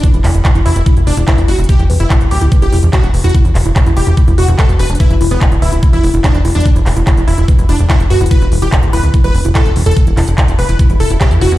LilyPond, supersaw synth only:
\new Staff \with { instrumentName = "Supersaw synth" } { \time 4/4 \key e \minor \tempo 4 = 145 r4. e'8 r8 d'16 r16 e'16 r16 fis'16 r16 | g'16 r8 e'16 r8 g'16 r8 g'16 r8 fis'16 r8 fis'16 | r4. g'8 r8 fis'16 r16 a'16 r16 b'16 r16 | e'16 r8 b16 r8 e'16 r8 e'16 r8 d'16 r8 d'16 |
r4. e'8 r8 d'16 r16 e'16 r16 fis'16 r16 | b'16 r8 g'16 r8 b'16 r8 b'16 r8 a'16 r8 a'16 | r4. b'8 r8 a'16 r16 g'16 r16 fis'16 r16 | }